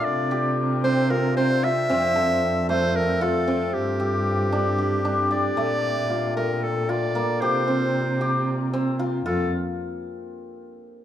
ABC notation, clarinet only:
X:1
M:7/8
L:1/8
Q:1/4=114
K:Cmix
V:1 name="Clarinet"
d2 z c B c e- | e3 c B A2 | G6 d- | d3 B A d2 |
c4- c z2 | A z6 |]